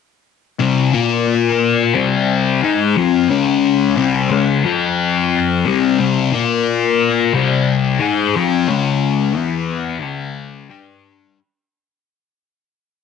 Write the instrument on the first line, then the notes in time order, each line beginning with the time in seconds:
distorted electric guitar
0.59 C3 G3 C4
0.93 A#3 F4 A#4
1.94 C3 G3 C4
2.63 G#3 D#4 G#4
2.96 F3 C4 F4
3.29 C#3 G#3 C#4
3.97 C3 G3 C4
4.30 C#3 G#3 C#4
4.64 F3 C4 F4
5.66 C3 G3 C4
5.99 C3 G3 C4
6.32 A#3 F4 A#4
7.34 C3 G3 C4
8.00 G#3 D#4 G#4
8.37 F3 C4 F4
8.69 C#3 G#3 C#4
9.36 E3 B3 E4
10.02 C#3 G#3 C#4
10.70 G3 D4 G4